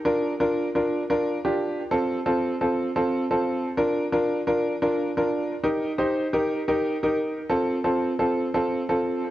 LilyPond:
\new Staff \with { instrumentName = "Grand piano" } { \time 4/4 \key f \mixolydian \tempo 4 = 129 <d' f' bes'>8 r16 <d' f' bes'>8 r16 <d' f' bes'>8 r16 <d' f' bes'>8 r16 <d' f' g'>8. r16 | <c' f' a'>8 r16 <c' f' a'>8 r16 <c' f' a'>8 r16 <c' f' a'>8 r16 <c' f' a'>8. r16 | <d' f' bes'>8 r16 <d' f' bes'>8 r16 <d' f' bes'>8 r16 <d' f' bes'>8 r16 <d' f' bes'>8. r16 | <ees' g' bes'>8 r16 <ees' g' c''>8 r16 <ees' g' bes'>8 r16 <ees' g' bes'>8 r16 <ees' g' bes'>8. r16 |
<c' f' a'>8 r16 <c' f' a'>8 r16 <c' f' a'>8 r16 <c' f' a'>8 r16 <c' f' a'>8. r16 | }